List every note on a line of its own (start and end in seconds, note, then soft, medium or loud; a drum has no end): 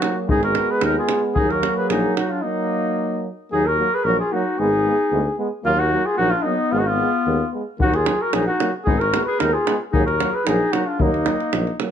0.00 0.31 F#3 medium
0.00 0.32 A#3 medium
0.00 0.17 D#4 medium
0.00 0.18 F#4 medium
0.00 davul high medium
0.29 0.58 G#1 medium
0.29 1.39 G#3 medium
0.29 1.40 B3 medium
0.29 0.42 D#4 medium
0.29 0.43 G#4 medium
0.29 davul low medium
0.43 0.72 F#4 medium
0.43 0.72 A#4 medium
0.43 davul high soft
0.55 davul high medium
0.71 0.85 G#4 medium
0.71 0.85 B4 medium
0.81 0.97 D#2 medium
0.81 0.97 D#4 medium
0.81 0.97 A#4 loud
0.81 davul high medium
0.99 1.23 F4 medium
0.99 1.23 G#4 medium
1.09 davul high medium
1.35 1.66 D#2 medium
1.35 2.44 F#3 medium
1.35 1.53 D#4 medium
1.35 1.51 G#4 loud
1.35 davul low medium
1.39 2.28 A#3 medium
1.49 1.78 F#4 medium
1.49 1.75 A#4 medium
1.49 davul high soft
1.63 davul high medium
1.76 1.90 G#4 medium
1.76 1.89 B4 medium
1.90 2.05 A#1 medium
1.90 2.15 D#4 medium
1.90 2.15 G#4 medium
1.90 davul high medium
2.16 2.33 D#4 medium
2.16 2.31 F#4 medium
2.16 davul high medium
2.30 2.45 D4 medium
2.30 2.43 F4 medium
2.42 3.29 F#3 medium
2.42 3.24 A#3 medium
2.42 3.29 A#3 medium
2.42 3.23 D#4 medium
3.51 3.82 D#2 medium
3.51 3.63 F#3 medium
3.51 3.62 A#3 medium
3.51 3.70 D#4 medium
3.51 3.67 G#4 medium
3.66 3.95 F#4 medium
3.66 3.96 A#4 medium
3.78 3.89 F#3 soft
3.78 3.89 A#3 medium
3.94 4.07 G#4 medium
3.94 4.05 B4 medium
4.04 4.20 A#1 loud
4.04 4.17 F#3 medium
4.04 4.16 A#3 medium
4.04 4.19 F#4 medium
4.04 4.18 A#4 loud
4.20 4.34 F4 medium
4.20 4.34 G#4 medium
4.32 4.44 F#3 medium
4.32 4.42 A#3 medium
4.32 4.58 D#4 medium
4.32 4.60 F#4 medium
4.58 4.89 G#1 medium
4.58 4.70 G#3 medium
4.58 4.69 B3 medium
4.58 5.39 D#4 medium
4.58 5.39 G#4 loud
4.85 4.96 G#3 medium
4.85 4.96 B3 medium
5.10 5.27 D2 loud
5.10 5.23 G#3 medium
5.10 5.21 B3 medium
5.37 5.49 G#3 medium
5.37 5.48 B3 medium
5.64 5.95 D#2 medium
5.64 5.76 F#3 medium
5.64 5.75 A#3 medium
5.64 5.80 A#3 medium
5.64 5.80 F4 loud
5.78 6.07 D#4 medium
5.78 6.07 F#4 loud
5.90 6.03 F#3 medium
5.90 6.01 A#3 medium
6.05 6.19 F4 medium
6.05 6.17 G#4 medium
6.16 6.34 A#1 medium
6.16 6.29 F#3 medium
6.16 6.28 A#3 medium
6.16 6.35 D#4 medium
6.16 6.32 F#4 loud
6.30 6.48 D4 medium
6.30 6.44 F4 medium
6.42 6.56 F#3 medium
6.42 6.54 A#3 medium
6.42 6.74 D#4 medium
6.47 6.73 B3 medium
6.71 7.02 G#1 medium
6.71 6.84 G#3 medium
6.71 6.82 B3 medium
6.71 6.79 F4 medium
6.78 6.90 D#4 medium
6.78 6.88 F#4 medium
6.86 7.54 B3 medium
6.86 7.52 F4 medium
6.99 7.10 G#3 medium
6.99 7.10 B3 medium
7.25 7.41 D#2 medium
7.25 7.37 G#3 medium
7.25 7.36 B3 medium
7.51 7.64 G#3 medium
7.51 7.62 B3 medium
7.78 8.09 D#2 medium
7.78 7.90 F#3 medium
7.78 7.89 A#3 medium
7.78 7.98 D#4 medium
7.78 7.96 F#4 loud
7.78 davul low medium
7.94 8.23 F4 medium
7.94 8.23 G#4 medium
7.94 davul high soft
8.05 8.16 F#3 medium
8.05 8.16 A#3 medium
8.05 davul high medium
8.22 8.36 F#4 medium
8.22 8.35 A#4 medium
8.32 8.48 A#1 medium
8.32 8.43 F#3 medium
8.32 8.43 A#3 soft
8.32 8.47 D#4 medium
8.32 8.46 G#4 medium
8.32 davul high medium
8.46 8.72 D#4 medium
8.46 8.71 F#4 medium
8.59 8.71 F#3 medium
8.59 8.70 A#3 medium
8.59 davul high medium
8.85 9.16 G#1 medium
8.85 8.98 G#3 medium
8.85 8.96 B3 medium
8.85 9.03 D#4 medium
8.85 9.01 G#4 medium
8.85 davul low loud
8.99 9.27 F#4 medium
8.99 9.24 A#4 medium
8.99 davul high soft
9.12 9.24 G#3 medium
9.12 9.23 B3 medium
9.12 davul high medium
9.25 9.41 G#4 medium
9.25 9.41 B4 medium
9.39 9.55 D#2 medium
9.39 9.51 G#3 medium
9.39 9.50 B3 medium
9.39 9.55 D#4 medium
9.39 9.55 A#4 loud
9.39 davul high medium
9.53 9.80 F4 medium
9.53 9.80 G#4 medium
9.66 9.77 G#3 medium
9.66 9.77 B3 medium
9.66 davul high medium
9.92 10.24 D#2 medium
9.92 10.05 F#3 medium
9.92 10.04 A#3 medium
9.92 10.05 D#4 medium
9.92 10.05 G#4 medium
9.92 davul low loud
10.06 10.34 F#4 medium
10.06 10.36 A#4 medium
10.06 davul high soft
10.20 10.30 F#3 medium
10.20 10.31 A#3 medium
10.20 davul high medium
10.32 10.46 G#4 medium
10.32 10.48 B4 medium
10.45 10.62 A#1 loud
10.45 10.57 F#3 medium
10.45 10.57 A#3 medium
10.45 10.73 D#4 medium
10.45 10.74 G#4 medium
10.45 davul high medium
10.72 10.83 F#3 medium
10.72 10.84 A#3 medium
10.72 10.87 D#4 medium
10.72 10.89 F#4 medium
10.72 davul high medium
10.85 11.01 D4 medium
10.85 11.03 F4 medium
11.00 11.29 D#2 medium
11.00 11.10 F#3 medium
11.00 11.79 A#3 medium
11.00 11.11 A#3 medium
11.00 11.80 D#4 medium
11.00 davul low loud
11.14 davul high soft
11.26 11.36 F#3 medium
11.26 11.37 A#3 medium
11.26 davul high medium
11.40 davul high soft
11.52 11.68 A#1 medium
11.52 11.63 F#3 medium
11.52 11.63 A#3 medium
11.52 davul high medium
11.67 davul high soft
11.80 11.91 F#3 medium
11.80 11.90 A#3 soft
11.80 davul high medium